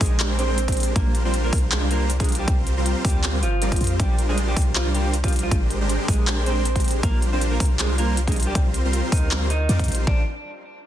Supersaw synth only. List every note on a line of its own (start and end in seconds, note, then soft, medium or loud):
0.01 0.18 G#3 medium
0.01 0.18 D4 medium
0.01 0.18 G4 medium
0.01 0.18 A#4 medium
0.01 0.18 C5 medium
0.20 0.37 G#3 medium
0.20 0.37 D4 medium
0.20 0.37 G4 medium
0.20 0.37 A#4 medium
0.20 0.37 C5 loud
0.39 0.59 G#3 medium
0.39 0.59 D4 medium
0.39 0.59 G4 medium
0.39 0.59 A#4 medium
0.39 0.59 C5 loud
0.68 0.94 G#3 medium
0.68 0.94 D4 medium
0.68 0.94 G4 medium
0.68 0.94 A#4 medium
0.68 0.94 C5 loud
0.96 1.23 G3 medium
0.96 1.23 D4 medium
0.96 1.23 F4 medium
0.96 1.23 A#4 medium
0.96 1.23 C5 medium
1.25 1.51 G3 medium
1.25 1.51 D4 medium
1.25 1.51 F4 medium
1.25 1.51 A#4 medium
1.25 1.51 C5 loud
1.53 1.70 G3 medium
1.53 1.70 D4 medium
1.53 1.70 F4 medium
1.53 1.70 A#4 medium
1.53 1.70 C5 medium
1.72 1.89 G3 medium
1.72 1.89 D4 medium
1.72 1.89 F4 medium
1.72 1.89 A#4 medium
1.72 1.89 C5 loud
1.91 2.11 G3 medium
1.91 2.11 D4 medium
1.91 2.11 F4 medium
1.91 2.11 A#4 medium
1.91 2.11 C5 medium
2.20 2.46 G3 medium
2.20 2.46 D4 medium
2.20 2.46 F4 medium
2.20 2.46 A#4 medium
2.20 2.46 C5 loud
2.48 2.75 G3 medium
2.48 2.75 C4 medium
2.48 2.75 F4 medium
2.48 2.75 A#4 medium
2.48 2.75 C5 medium
2.77 3.03 G3 medium
2.77 3.03 C4 medium
2.77 3.03 F4 medium
2.77 3.03 A#4 medium
2.77 3.03 C5 medium
3.05 3.22 G3 medium
3.05 3.22 C4 medium
3.05 3.22 F4 medium
3.05 3.22 A#4 medium
3.05 3.22 C5 medium
3.24 3.41 G3 medium
3.24 3.41 C4 medium
3.24 3.41 F4 medium
3.24 3.41 A#4 medium
3.24 3.41 C5 loud
3.62 3.79 G3 medium
3.62 3.79 C4 medium
3.62 3.79 F4 medium
3.62 3.79 A#4 medium
3.62 3.79 D5 medium
3.81 3.98 G3 medium
3.81 3.97 C4 medium
3.81 3.97 F4 medium
3.81 3.97 A#4 medium
3.81 3.98 C5 loud
4.00 4.26 G3 medium
4.00 4.26 D4 medium
4.00 4.26 F4 medium
4.00 4.26 A#4 medium
4.00 4.26 C5 medium
4.29 4.54 G3 medium
4.29 4.54 D4 medium
4.29 4.54 F4 medium
4.29 4.54 A#4 medium
4.29 4.54 C5 loud
4.57 4.73 G3 medium
4.57 4.74 D4 medium
4.57 4.73 F4 medium
4.57 4.73 A#4 medium
4.57 4.73 C5 medium
4.76 4.92 G3 medium
4.76 4.92 D4 medium
4.76 4.92 F4 medium
4.76 4.92 A#4 medium
4.76 4.92 C5 medium
4.95 5.15 G3 medium
4.95 5.15 D4 medium
4.95 5.15 F4 medium
4.95 5.15 A#4 medium
4.95 5.15 C5 medium
5.24 5.49 G3 medium
5.24 5.49 D4 medium
5.24 5.49 F4 medium
5.24 5.49 A#4 medium
5.24 5.49 C5 loud
5.51 5.78 G#3 medium
5.51 5.78 D4 medium
5.51 5.78 G4 medium
5.51 5.78 A#4 medium
5.51 5.78 C5 medium
5.81 6.06 G#3 medium
5.81 6.06 D4 medium
5.81 6.06 G4 medium
5.81 6.06 A#4 medium
5.81 6.06 C5 loud
6.08 6.25 G#3 medium
6.08 6.25 D4 medium
6.08 6.25 G4 medium
6.08 6.25 A#4 medium
6.08 6.25 C5 medium
6.27 6.44 G#3 medium
6.27 6.44 D4 medium
6.27 6.44 G4 medium
6.27 6.44 A#4 medium
6.27 6.44 C5 loud
6.46 6.67 G#3 medium
6.46 6.67 D4 medium
6.46 6.67 G4 medium
6.46 6.67 A#4 medium
6.46 6.67 C5 medium
6.76 7.01 G#3 medium
6.76 7.01 D4 medium
6.76 7.01 G4 medium
6.76 7.01 A#4 medium
6.76 7.01 C5 loud
7.03 7.30 G3 medium
7.03 7.30 D4 medium
7.03 7.30 F4 medium
7.03 7.30 A#4 medium
7.03 7.30 C5 medium
7.33 7.58 G3 medium
7.33 7.58 D4 medium
7.33 7.58 F4 medium
7.33 7.58 A#4 medium
7.33 7.58 C5 loud
7.60 7.77 G3 medium
7.60 7.77 D4 medium
7.60 7.77 F4 medium
7.60 7.77 A#4 medium
7.60 7.77 C5 medium
7.79 7.96 G3 medium
7.79 7.96 D4 medium
7.79 7.96 F4 medium
7.79 7.96 A#4 medium
7.79 7.96 C5 loud
7.98 8.19 G3 medium
7.98 8.19 D4 medium
7.98 8.19 F4 medium
7.98 8.19 A#4 medium
7.98 8.19 C5 medium
8.27 8.53 G3 medium
8.27 8.53 D4 medium
8.27 8.53 F4 medium
8.27 8.53 A#4 medium
8.27 8.53 C5 loud
8.55 8.82 G3 medium
8.55 8.82 C4 medium
8.55 8.82 F4 medium
8.55 8.82 A#4 medium
8.55 8.82 C5 medium
8.85 9.10 G3 medium
8.85 9.10 C4 medium
8.85 9.10 F4 medium
8.85 9.10 A#4 medium
8.85 9.10 C5 loud
9.12 9.29 G3 medium
9.12 9.29 C4 medium
9.12 9.29 F4 medium
9.12 9.29 A#4 medium
9.12 9.29 C5 medium
9.31 9.48 G3 medium
9.31 9.48 C4 medium
9.31 9.48 F4 medium
9.31 9.48 A#4 medium
9.31 9.48 C5 medium
9.69 9.86 G3 medium
9.69 9.86 C4 medium
9.69 9.86 F4 medium
9.69 9.86 A#4 medium
9.69 9.86 D5 medium
9.88 10.05 G3 loud
9.88 10.05 C4 medium
9.88 10.05 F4 medium
9.88 10.05 A#4 medium
9.88 10.05 C5 loud
10.07 10.22 G3 medium
10.07 10.22 D4 medium
10.07 10.22 F4 medium
10.07 10.22 A#4 medium
10.07 10.22 C5 medium